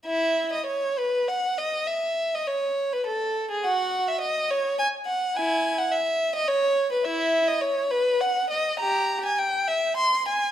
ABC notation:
X:1
M:3/4
L:1/16
Q:1/4=102
K:E
V:1 name="Violin"
[Ee]3 d c2 B2 f2 d2 | e3 d c3 B A3 G | [Ff]3 e d2 c2 g2 f2 | [Eg]3 f e3 d c3 B |
[Ee]3 d c2 B2 f2 d2 | [=G^a]3 ^g =g2 e2 ^b2 ^g2 |]